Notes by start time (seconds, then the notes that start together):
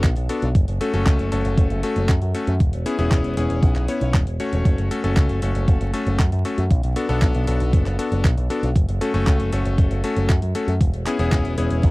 0.04 B1, kick, clap, closed hi-hat
0.16 B1, closed hi-hat
0.29 B3 D4 F#4 A4, closed hi-hat
0.42 B1, closed hi-hat
0.55 F#1, kick, closed hi-hat
0.68 F#1, closed hi-hat
0.81 A3 C#4 F#4 A4, closed hi-hat
0.93 F#1 A3 C#4 F#4 A4, closed hi-hat
1.06 C#2, kick, clap, closed hi-hat
1.19 F#1, closed hi-hat
1.32 F#1 A3 C#4 F#4 A4, closed hi-hat
1.45 F#1, closed hi-hat
1.58 F#1, kick, closed hi-hat
1.70 F#1, closed hi-hat
1.83 A3 C#4 F#4 A4, closed hi-hat
1.96 F#1, closed hi-hat
2.09 F#2, kick, clap, closed hi-hat
2.22 F#2, closed hi-hat
2.35 A3 C#4 F#4 A4, closed hi-hat
2.47 F#2, closed hi-hat
2.60 E1, kick, closed hi-hat
2.73 E1, closed hi-hat
2.86 B3 C#4 E4 G#4, closed hi-hat
2.99 E1 B3 C#4 E4 G#4, closed hi-hat
3.11 E1, kick, clap, closed hi-hat
3.24 E1, closed hi-hat
3.37 E1 B3 C#4 E4 G#4, closed hi-hat
3.50 E1, closed hi-hat
3.63 B1, kick, closed hi-hat
3.76 B1, clap, closed hi-hat
3.88 B3 C#4 E4 C#5, closed hi-hat
4.01 B1, closed hi-hat
4.14 E1, kick, clap, closed hi-hat
4.27 E1, closed hi-hat
4.40 A3 C#4 F#4 C#5, closed hi-hat
4.53 E1, closed hi-hat
4.65 F#1, kick, closed hi-hat
4.78 F#1, closed hi-hat
4.91 A3 C#4 F#4 A4, closed hi-hat
5.04 F#1 A3 C#4 F#4 A4, closed hi-hat
5.17 C#2, kick, clap, closed hi-hat
5.29 F#1, closed hi-hat
5.42 F#1 A3 C#4 F#4 A4, closed hi-hat
5.55 F#1, closed hi-hat
5.68 F#1, kick, closed hi-hat
5.81 F#1, closed hi-hat
5.94 A3 C#4 F#4 A4, closed hi-hat
6.06 F#1, closed hi-hat
6.19 F#2, kick, clap, closed hi-hat
6.32 F#2, closed hi-hat
6.45 A3 C#4 F#4 A4, closed hi-hat
6.58 F#2, closed hi-hat
6.71 B1, kick, closed hi-hat
6.83 B1, closed hi-hat
6.96 B3 D4 F#4 A4, closed hi-hat
7.09 B1 B3 D4 F#4 A4, closed hi-hat
7.22 B1, kick, clap, closed hi-hat
7.35 B1, closed hi-hat
7.47 B1 B3 D4 F#4 A4, closed hi-hat
7.60 B1, closed hi-hat
7.73 F#1, kick, closed hi-hat
7.86 F#1, clap, closed hi-hat
7.99 B3 D4 F#4 A4, closed hi-hat
8.12 F#1, closed hi-hat
8.24 B1, kick, clap, closed hi-hat
8.37 B1, closed hi-hat
8.50 B3 D4 F#4 A4, closed hi-hat
8.63 B1, closed hi-hat
8.76 F#1, kick, closed hi-hat
8.89 F#1, closed hi-hat
9.01 A3 C#4 F#4 A4, closed hi-hat
9.14 F#1 A3 C#4 F#4 A4, closed hi-hat
9.27 C#2, kick, clap, closed hi-hat
9.40 F#1, closed hi-hat
9.52 F#1 A3 C#4 F#4 A4, closed hi-hat
9.65 F#1, closed hi-hat
9.78 F#1, kick, closed hi-hat
9.91 F#1, closed hi-hat
10.04 A3 C#4 F#4 A4, closed hi-hat
10.16 F#1, closed hi-hat
10.29 F#2, kick, clap, closed hi-hat
10.42 F#2, closed hi-hat
10.55 A3 C#4 F#4 A4, closed hi-hat
10.68 F#2, closed hi-hat
10.81 E1, kick, closed hi-hat
10.93 E1, closed hi-hat
11.06 B3 C#4 E4 G#4, clap, closed hi-hat
11.19 E1 B3 C#4 E4 G#4, closed hi-hat
11.32 E1, kick, clap, closed hi-hat
11.45 E1, closed hi-hat
11.58 E1 B3 C#4 E4 G#4, closed hi-hat
11.71 E1, closed hi-hat
11.83 B1, kick, closed hi-hat